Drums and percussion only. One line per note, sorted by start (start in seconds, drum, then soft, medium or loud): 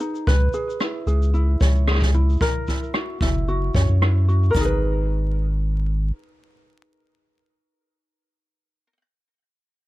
0.00 shaker medium
0.15 shaker soft
0.27 kick medium
0.27 shaker soft
0.53 shaker medium
0.70 shaker medium
0.80 cross-stick medium
0.80 shaker soft
1.08 shaker medium
1.22 shaker medium
1.34 shaker soft
1.61 kick medium
1.61 shaker medium
1.76 shaker soft
1.88 cross-stick medium
1.88 shaker soft
1.91 cross-stick medium
1.95 cross-stick medium
1.99 kick medium
1.99 cross-stick soft
2.14 shaker medium
2.30 shaker soft
2.32 shaker soft
2.37 shaker soft
2.39 kick medium
2.39 shaker soft
2.67 kick soft
2.67 shaker medium
2.83 shaker soft
2.94 cross-stick medium
2.94 shaker soft
3.21 kick medium
3.21 shaker medium
3.37 shaker soft
3.48 shaker soft
3.74 kick medium
3.74 shaker medium
3.90 shaker soft
4.02 cross-stick medium
4.02 shaker soft
4.29 shaker medium
4.43 shaker soft
4.49 shaker soft
4.55 kick medium
4.55 shaker soft
4.63 shaker soft